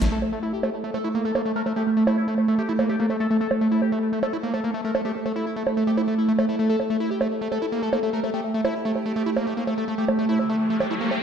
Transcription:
Already playing: ambient pad A3 E4
0.01 analog synth bass A1, acid bass A3, snare, closed hi-hat, cabasa
0.12 ambient pad A3 A4, acid bass A3, analog synth lead A4
0.22 analog synth lead A3, high bongo
0.32 analog synth lead A3, acid bass A3
0.43 analog synth lead A3, acid bass E4
0.53 analog synth lead G4
0.63 analog synth lead A3, acid bass A3, high bongo
0.74 analog synth lead A3
0.84 acid bass A3, analog synth lead A3
0.94 acid bass A3, analog synth lead A4, high bongo
1.04 analog synth lead A3, acid bass E4
1.15 analog synth lead A3, acid bass A#3
1.25 acid bass A3, analog synth lead A4
1.35 analog synth lead A3, acid bass A#3, high bongo
1.45 analog synth lead A3, acid bass A3
1.56 acid bass A3, analog synth lead A#4
1.66 acid bass A3, analog synth lead A3, high bongo
1.76 acid bass A3, analog synth lead G4
1.87 analog synth lead A3
1.97 analog synth lead A3, acid bass A3
2.07 analog synth lead A3, acid bass E4, high bongo
2.17 analog synth lead E4
2.28 analog synth lead A3, acid bass A3
2.38 analog synth lead A3, high bongo
2.48 acid bass A3, analog synth lead A3
2.58 acid bass A3, analog synth lead G4
2.69 analog synth lead A3, acid bass E4
2.79 analog synth lead A3, acid bass A#3, high bongo
2.89 acid bass A3, analog synth lead G4
3.00 analog synth lead A3, acid bass A#3
3.10 acid bass A3, analog synth lead A3, high bongo
3.20 acid bass A3, analog synth lead A4
3.30 acid bass A3, analog synth lead A3
3.41 acid bass A3, analog synth lead A4
3.51 analog synth lead A3, high bongo
3.61 analog synth lead A3, acid bass A3
3.71 analog synth lead A3, acid bass E4
3.82 analog synth lead G4, high bongo
3.92 analog synth lead A3, acid bass A3
4.02 analog synth lead A3
4.13 acid bass A3, analog synth lead A3
4.23 acid bass A3, analog synth lead A4, high bongo
4.33 analog synth lead A3, acid bass E4
4.43 analog synth lead A3, acid bass A#3
4.54 acid bass A3, analog synth lead A4, high bongo
4.64 analog synth lead A3, acid bass A#3
4.74 acid bass A3, analog synth lead A3
4.84 acid bass A3, analog synth lead A#4
4.95 analog synth lead A3, acid bass A3, high bongo
5.05 acid bass A3, analog synth lead G4
5.15 analog synth lead A3
5.26 analog synth lead A3, acid bass A3, high bongo
5.36 analog synth lead A3, acid bass E4
5.46 analog synth lead E4
5.56 analog synth lead A3, acid bass A3
5.67 analog synth lead A3, high bongo
5.77 acid bass A3, analog synth lead A3
5.87 acid bass A3, analog synth lead G4
5.97 analog synth lead A3, acid bass E4, high bongo
6.08 analog synth lead A3, acid bass A3
6.18 analog synth lead E4
6.28 analog synth lead A3, acid bass A3
6.39 analog synth lead A3, acid bass A3, high bongo
6.49 acid bass A3, analog synth lead E4
6.59 acid bass A3, analog synth lead A3
6.69 acid bass A3, ambient pad G4, analog synth lead A4
6.80 analog synth lead A3, high bongo
6.90 analog synth lead A3, acid bass A3
7.00 analog synth lead A3, acid bass E4
7.10 analog synth lead G4
7.21 analog synth lead A3, acid bass A3, high bongo
7.31 analog synth lead A3
7.41 analog synth lead A3, acid bass A3
7.52 acid bass A3, analog synth lead A4, high bongo
7.62 analog synth lead A3, acid bass E4
7.72 analog synth lead A3, acid bass A#3
7.82 acid bass A3, analog synth lead A4
7.93 analog synth lead A3, acid bass A#3, high bongo
8.03 acid bass A3, analog synth lead A3
8.13 acid bass A3, analog synth lead A#4
8.24 acid bass A3, analog synth lead A3, high bongo
8.34 acid bass A3, analog synth lead G4
8.44 analog synth lead A3
8.54 acid bass A3, analog synth lead A3
8.65 analog synth lead A3, acid bass E4, high bongo
8.75 analog synth lead E4
8.85 analog synth lead A3, acid bass A3
8.95 analog synth lead A3, high bongo
9.06 acid bass A3, analog synth lead A3
9.16 acid bass A3, analog synth lead G4
9.26 analog synth lead A3, acid bass E4
9.37 analog synth lead A3, acid bass A#3, high bongo
9.47 acid bass A3, analog synth lead G4
9.57 analog synth lead A3, acid bass A#3
9.67 acid bass A3, analog synth lead A3, high bongo
9.78 acid bass A3, analog synth lead A4
9.88 acid bass A3, analog synth lead A3
9.98 acid bass A3, analog synth lead G4, riser
10.08 analog synth lead A3, high bongo
10.19 acid bass A3, analog synth lead A3
10.29 analog synth lead A3, acid bass E4
10.39 analog synth lead E4, high bongo
10.50 analog synth lead A3, acid bass A3
10.60 analog synth lead A3
10.70 acid bass A3, analog synth lead A3
10.80 acid bass A3, analog synth lead G4, high bongo
10.91 analog synth lead A3, acid bass E4
11.01 analog synth lead A3, acid bass A#3
11.11 acid bass A3, analog synth lead G4, high bongo

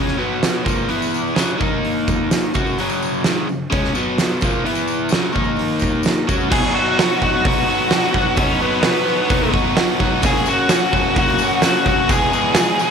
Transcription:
Already playing: overdriven electric guitar C#3 G#3 C#4
0.08 snare
0.17 overdriven electric guitar B2 F#3 B3
0.43 snare, open hi-hat, tambourine
0.56 tambourine
0.65 overdriven electric guitar A#2 F3 A#3, kick, tambourine
0.89 overdriven electric guitar E3 B3 E4, open hi-hat, tambourine
1.02 tambourine
1.14 tambourine
1.28 tambourine
1.35 overdriven electric guitar F#2 C#3 F#3, snare, open hi-hat, tambourine
1.58 overdriven electric guitar D#3 A#3 D#4, kick, tambourine
1.85 open hi-hat
2.08 kick, tambourine
2.31 snare, open hi-hat, tambourine
2.43 tambourine
2.54 overdriven electric guitar F#3 C#4 F#4, kick, tambourine
2.67 tambourine
2.78 overdriven electric guitar F#2 C#3 F#3, open hi-hat, tambourine
2.90 tambourine
3.03 tambourine
3.14 tambourine
3.24 overdriven electric guitar G#2 D#3 G#3, snare, open hi-hat, tambourine
3.48 overdriven electric guitar F#2 C#3, tambourine
3.70 overdriven electric guitar C#3 G#3 C#4, kick, open hi-hat
3.85 snare
3.94 overdriven electric guitar B2 F#3 B3, tambourine
4.18 snare, open hi-hat, tambourine
4.30 tambourine
4.41 overdriven electric guitar A#2 F3 A#3, kick, tambourine
4.53 tambourine
4.65 overdriven electric guitar E3 B3 E4, open hi-hat, tambourine
4.75 tambourine
4.88 tambourine
5.09 overdriven electric guitar F#2 C#3 F#3, snare, open hi-hat, tambourine
5.21 tambourine
5.32 overdriven electric guitar D#3 A#3 D#4, kick, tambourine
5.44 tambourine
5.56 open hi-hat, tambourine
5.68 tambourine
5.79 kick, tambourine
5.91 tambourine
6.03 snare, open hi-hat, tambourine
6.27 overdriven electric guitar F#3 C#4 F#4, kick, tambourine
6.41 tambourine
6.50 overdriven electric guitar B2 F#3 B3 D#4 F#4, lead electric guitar G#4, kick, crash
6.74 overdriven electric guitar B2 F#3 B3 D#4 F#4
6.98 overdriven electric guitar B2 F#3 B3 D#4 F#4, snare, open hi-hat
7.22 overdriven electric guitar B2 F#3 B3 D#4 F#4, kick
7.45 overdriven electric guitar B2 F#3 B3 D#4 F#4, kick, open hi-hat
7.68 overdriven electric guitar B2 F#3 B3 D#4 F#4
7.91 overdriven electric guitar B2 F#3 B3 D#4 F#4, snare, open hi-hat
8.14 overdriven electric guitar B2 F#3 B3 D#4 F#4, kick
8.37 overdriven electric guitar B2 F#3 B3 D#4 F#4, lead electric guitar C#4, kick, open hi-hat
8.62 overdriven electric guitar B2 F#3 B3 D#4 F#4
8.82 overdriven electric guitar B2 F#3 B3 D#4 F#4, snare, open hi-hat
9.04 overdriven electric guitar B2 F#3 B3 D#4 F#4
9.28 overdriven electric guitar B2 F#3 B3 D#4 F#4, kick, open hi-hat
9.52 overdriven electric guitar B2 F#3 B3 D#4 F#4, kick
9.76 overdriven electric guitar B2 F#3 B3 D#4 F#4, snare, open hi-hat
9.99 overdriven electric guitar B2 F#3 B3 D#4 F#4, kick
10.22 overdriven electric guitar F#2 C#3 F#3 A#3 C#4 F#4, lead electric guitar G#4, kick, open hi-hat, tambourine
10.46 overdriven electric guitar F#2 C#3 F#3 A#3 C#4 F#4, tambourine
10.69 overdriven electric guitar F#2 C#3 F#3 A#3 C#4 F#4, snare, open hi-hat, tambourine
10.91 overdriven electric guitar F#2 C#3 F#3 A#3 C#4 F#4, kick
11.16 overdriven electric guitar F#2 C#3 F#3 A#3 C#4 F#4, kick, open hi-hat, tambourine
11.39 overdriven electric guitar F#2 C#3 F#3 C#4, tambourine
11.43 overdriven electric guitar A#3 F#4
11.62 overdriven electric guitar F#2 C#3 F#3 A#3 C#4 F#4, snare, open hi-hat, tambourine
11.86 overdriven electric guitar F#2 C#3 F#3 A#3 C#4 F#4, kick, tambourine
12.09 overdriven electric guitar E2 B2 E3 G#3 B3 G#4, kick, open hi-hat, tambourine
12.32 overdriven electric guitar E2 B2 E3 G#3 B3 G#4, tambourine
12.55 overdriven electric guitar E2 B2 E3 G#3 B3 G#4, snare, open hi-hat, tambourine
12.79 overdriven electric guitar E2 B2 E3 G#3 B3 G#4, tambourine

